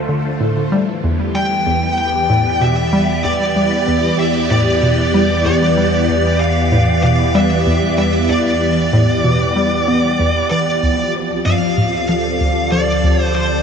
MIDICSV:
0, 0, Header, 1, 5, 480
1, 0, Start_track
1, 0, Tempo, 631579
1, 547, Time_signature, 4, 2, 24, 8
1, 10356, End_track
2, 0, Start_track
2, 0, Title_t, "Lead electric guitar"
2, 0, Program_c, 0, 29
2, 1028, Note_on_c, 0, 79, 99
2, 1498, Note_off_c, 0, 79, 0
2, 1507, Note_on_c, 0, 79, 99
2, 1988, Note_on_c, 0, 76, 89
2, 2001, Note_off_c, 0, 79, 0
2, 2462, Note_off_c, 0, 76, 0
2, 2465, Note_on_c, 0, 74, 97
2, 3156, Note_off_c, 0, 74, 0
2, 3186, Note_on_c, 0, 76, 90
2, 3410, Note_off_c, 0, 76, 0
2, 3428, Note_on_c, 0, 74, 89
2, 4141, Note_off_c, 0, 74, 0
2, 4150, Note_on_c, 0, 74, 86
2, 4864, Note_off_c, 0, 74, 0
2, 4867, Note_on_c, 0, 77, 91
2, 5338, Note_off_c, 0, 77, 0
2, 5347, Note_on_c, 0, 77, 92
2, 5588, Note_off_c, 0, 77, 0
2, 5591, Note_on_c, 0, 76, 89
2, 6060, Note_off_c, 0, 76, 0
2, 6069, Note_on_c, 0, 76, 83
2, 6306, Note_off_c, 0, 76, 0
2, 6309, Note_on_c, 0, 74, 82
2, 7958, Note_off_c, 0, 74, 0
2, 7986, Note_on_c, 0, 74, 108
2, 8436, Note_off_c, 0, 74, 0
2, 8706, Note_on_c, 0, 77, 86
2, 9178, Note_off_c, 0, 77, 0
2, 9187, Note_on_c, 0, 77, 87
2, 9663, Note_off_c, 0, 77, 0
2, 9667, Note_on_c, 0, 74, 83
2, 10047, Note_off_c, 0, 74, 0
2, 10047, Note_on_c, 0, 72, 83
2, 10148, Note_off_c, 0, 72, 0
2, 10148, Note_on_c, 0, 72, 92
2, 10356, Note_off_c, 0, 72, 0
2, 10356, End_track
3, 0, Start_track
3, 0, Title_t, "String machine"
3, 0, Program_c, 1, 50
3, 0, Note_on_c, 1, 50, 76
3, 0, Note_on_c, 1, 57, 82
3, 0, Note_on_c, 1, 65, 64
3, 0, Note_on_c, 1, 72, 82
3, 544, Note_on_c, 1, 52, 77
3, 546, Note_off_c, 1, 72, 0
3, 547, Note_off_c, 1, 57, 0
3, 547, Note_off_c, 1, 65, 0
3, 548, Note_off_c, 1, 50, 0
3, 723, Note_on_c, 1, 59, 72
3, 845, Note_on_c, 1, 67, 72
3, 1552, Note_on_c, 1, 74, 77
3, 4521, Note_off_c, 1, 74, 0
3, 4530, Note_on_c, 1, 74, 78
3, 8226, Note_off_c, 1, 52, 0
3, 8226, Note_off_c, 1, 59, 0
3, 8227, Note_off_c, 1, 74, 0
3, 8232, Note_on_c, 1, 53, 72
3, 8453, Note_on_c, 1, 60, 83
3, 8996, Note_on_c, 1, 69, 78
3, 9045, Note_on_c, 1, 74, 88
3, 10140, Note_off_c, 1, 67, 0
3, 10356, Note_off_c, 1, 53, 0
3, 10356, Note_off_c, 1, 60, 0
3, 10356, Note_off_c, 1, 69, 0
3, 10356, Note_off_c, 1, 74, 0
3, 10356, End_track
4, 0, Start_track
4, 0, Title_t, "Synth arpeggio sound"
4, 0, Program_c, 2, 84
4, 67, Note_on_c, 2, 50, 75
4, 295, Note_off_c, 2, 50, 0
4, 308, Note_on_c, 2, 45, 72
4, 479, Note_off_c, 2, 45, 0
4, 547, Note_on_c, 2, 55, 96
4, 650, Note_off_c, 2, 55, 0
4, 788, Note_on_c, 2, 40, 72
4, 1016, Note_off_c, 2, 40, 0
4, 1027, Note_on_c, 2, 55, 72
4, 1255, Note_off_c, 2, 55, 0
4, 1266, Note_on_c, 2, 40, 69
4, 1439, Note_off_c, 2, 40, 0
4, 1746, Note_on_c, 2, 45, 92
4, 1850, Note_off_c, 2, 45, 0
4, 1986, Note_on_c, 2, 47, 72
4, 2158, Note_off_c, 2, 47, 0
4, 2226, Note_on_c, 2, 55, 100
4, 2330, Note_off_c, 2, 55, 0
4, 2466, Note_on_c, 2, 40, 78
4, 2695, Note_off_c, 2, 40, 0
4, 2707, Note_on_c, 2, 55, 76
4, 2935, Note_off_c, 2, 55, 0
4, 2947, Note_on_c, 2, 40, 74
4, 3119, Note_off_c, 2, 40, 0
4, 3427, Note_on_c, 2, 45, 94
4, 3530, Note_off_c, 2, 45, 0
4, 3668, Note_on_c, 2, 47, 72
4, 3839, Note_off_c, 2, 47, 0
4, 3908, Note_on_c, 2, 55, 96
4, 4011, Note_off_c, 2, 55, 0
4, 4148, Note_on_c, 2, 40, 76
4, 4375, Note_off_c, 2, 40, 0
4, 4387, Note_on_c, 2, 55, 83
4, 4615, Note_off_c, 2, 55, 0
4, 4627, Note_on_c, 2, 40, 76
4, 4799, Note_off_c, 2, 40, 0
4, 5107, Note_on_c, 2, 45, 95
4, 5210, Note_off_c, 2, 45, 0
4, 5347, Note_on_c, 2, 47, 81
4, 5519, Note_off_c, 2, 47, 0
4, 5585, Note_on_c, 2, 55, 94
4, 5689, Note_off_c, 2, 55, 0
4, 5826, Note_on_c, 2, 40, 71
4, 6055, Note_off_c, 2, 40, 0
4, 6065, Note_on_c, 2, 55, 76
4, 6294, Note_off_c, 2, 55, 0
4, 6306, Note_on_c, 2, 40, 80
4, 6478, Note_off_c, 2, 40, 0
4, 6788, Note_on_c, 2, 45, 98
4, 6891, Note_off_c, 2, 45, 0
4, 7025, Note_on_c, 2, 47, 71
4, 7198, Note_off_c, 2, 47, 0
4, 7266, Note_on_c, 2, 55, 98
4, 7370, Note_off_c, 2, 55, 0
4, 7508, Note_on_c, 2, 59, 75
4, 7679, Note_off_c, 2, 59, 0
4, 7748, Note_on_c, 2, 40, 74
4, 7919, Note_off_c, 2, 40, 0
4, 7989, Note_on_c, 2, 52, 76
4, 8091, Note_off_c, 2, 52, 0
4, 8229, Note_on_c, 2, 38, 81
4, 8400, Note_off_c, 2, 38, 0
4, 8708, Note_on_c, 2, 43, 96
4, 8811, Note_off_c, 2, 43, 0
4, 8948, Note_on_c, 2, 45, 72
4, 9120, Note_off_c, 2, 45, 0
4, 9188, Note_on_c, 2, 53, 98
4, 9290, Note_off_c, 2, 53, 0
4, 9428, Note_on_c, 2, 38, 70
4, 9655, Note_off_c, 2, 38, 0
4, 9668, Note_on_c, 2, 53, 74
4, 9896, Note_off_c, 2, 53, 0
4, 9908, Note_on_c, 2, 38, 74
4, 10079, Note_off_c, 2, 38, 0
4, 10356, End_track
5, 0, Start_track
5, 0, Title_t, "Analog synth bass"
5, 0, Program_c, 3, 38
5, 0, Note_on_c, 3, 38, 88
5, 523, Note_off_c, 3, 38, 0
5, 547, Note_on_c, 3, 40, 86
5, 8203, Note_off_c, 3, 40, 0
5, 8229, Note_on_c, 3, 38, 90
5, 10356, Note_off_c, 3, 38, 0
5, 10356, End_track
0, 0, End_of_file